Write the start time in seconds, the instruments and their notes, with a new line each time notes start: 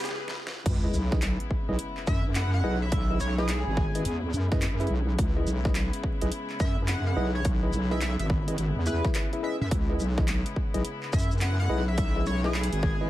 0.04 snare
0.09 snare
0.28 snare
0.47 snare
0.65 wobble bass C#2, string section C#3 G#3 B3 E4, kick, closed hi-hat, crash, sub drop
0.84 tine electric piano E4 G#4 B4 D#5
0.94 wobble bass B1, shaker
1.12 tine electric piano E4 G#4 B4 D#5, kick, snare
1.22 clap, closed hi-hat
1.40 closed hi-hat
1.51 kick
1.68 wobble bass B1, tine electric piano E4 G#4 B4 D#5
1.79 closed hi-hat
1.97 clap
2.07 wobble bass F#2, analog synth lead E5, kick, shaker
2.35 analog synth lead F#5, clap, closed hi-hat
2.54 analog synth lead F#5
2.64 wobble bass B1, tine electric piano E4 G#4 B4 D#5
2.82 analog synth lead E5
2.92 kick, closed hi-hat
3.10 tine electric piano E4 G#4 B4 D#5
3.20 wobble bass B1, analog synth lead C#5, shaker
3.38 tine electric piano E4 G#4 B4 D#5, analog synth lead G#4, snare
3.49 clap, closed hi-hat
3.67 wobble bass G#1
3.77 kick
3.95 tine electric piano E4 G#4 B4 D#5, closed hi-hat
4.05 wobble bass E2, closed hi-hat
4.33 wobble bass F#2, shaker
4.52 tine electric piano E4 G#4 B4 D#5, kick, snare
4.62 clap, closed hi-hat
4.80 tine electric piano E4 G#4 B4 E5, closed hi-hat
4.87 wobble bass B1, closed hi-hat
5.18 wobble bass C#2, string section E4, kick, closed hi-hat
5.36 tine electric piano E4 G#4 B4 D#5
5.47 wobble bass B1, shaker
5.65 tine electric piano E4 G#4 B4 D#5, kick, snare
5.75 clap, closed hi-hat
5.93 closed hi-hat
6.03 kick
6.21 wobble bass B1, tine electric piano E4 G#4 B4 D#5, closed hi-hat
6.32 closed hi-hat
6.50 clap
6.60 wobble bass F#2, analog synth lead E5, kick, shaker
6.88 analog synth lead F#5, clap, closed hi-hat
7.07 analog synth lead F#5
7.16 wobble bass B1, tine electric piano E4 G#4 B4 D#5
7.35 analog synth lead C#5
7.45 kick, closed hi-hat
7.63 tine electric piano E4 G#4 B4 D#5
7.73 wobble bass B1, shaker
7.91 tine electric piano E4 G#4 B4 D#5, analog synth lead E5, snare
8.01 analog synth lead E5, clap, closed hi-hat
8.19 wobble bass G#1, analog synth lead E5, closed hi-hat
8.30 kick
8.48 tine electric piano E4 G#4 B4 D#5, closed hi-hat
8.58 wobble bass G#1, closed hi-hat
8.76 wobble bass E2
8.86 tine electric piano E4 G#4 B4 E5, analog synth lead B4, shaker
9.04 kick, snare
9.15 clap, closed hi-hat
9.33 tine electric piano E4 G#4 B4 E5, closed hi-hat
9.43 tine electric piano E4 G#4 B4 D#5, analog synth lead E5
9.61 wobble bass F#2, analog synth lead E5
9.70 wobble bass C#2, string section E4, kick, closed hi-hat
9.90 tine electric piano E4 G#4 B4 D#5
10.00 wobble bass B1, shaker
10.18 tine electric piano E4 G#4 B4 D#5, kick, snare
10.28 clap, closed hi-hat
10.46 closed hi-hat
10.56 kick
10.74 wobble bass B1, tine electric piano E4 G#4 B4 D#5, closed hi-hat
10.85 closed hi-hat
11.03 clap
11.13 wobble bass F#2, analog synth lead E5, kick, shaker
11.19 shaker
11.22 shaker
11.31 shaker
11.38 analog synth lead F#5, clap, closed hi-hat, shaker
11.59 analog synth lead F#5
11.69 wobble bass B1, tine electric piano E4 G#4 B4 D#5
11.88 analog synth lead E5
11.98 kick, closed hi-hat
12.16 tine electric piano E4 G#4 B4 D#5
12.26 wobble bass B1, analog synth lead C#5, shaker
12.44 tine electric piano E4 G#4 B4 D#5, analog synth lead G#4, snare
12.54 clap
12.63 closed hi-hat
12.72 wobble bass G#1, closed hi-hat
12.83 kick
13.01 tine electric piano E4 G#4 B4 D#5